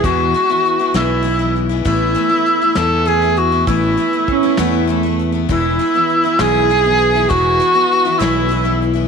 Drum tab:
HH |xxxxxx|xxxxxx|xxxxxx|xxxxxx|
SD |---o--|---o--|---o--|---o--|
BD |o-----|o-----|o-o---|o-----|

HH |xxxxxx|
SD |---o--|
BD |o-----|